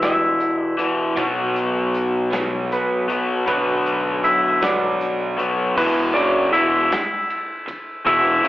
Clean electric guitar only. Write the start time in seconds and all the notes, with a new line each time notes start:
0.02 E4 E5
0.63 D5
2.73 B3 B4
3.48 B3 B4
4.24 E4 E5
4.63 D4 D5
5.78 B3 B4
6.14 D4 D5
6.53 E4 E5
8.07 E4 E5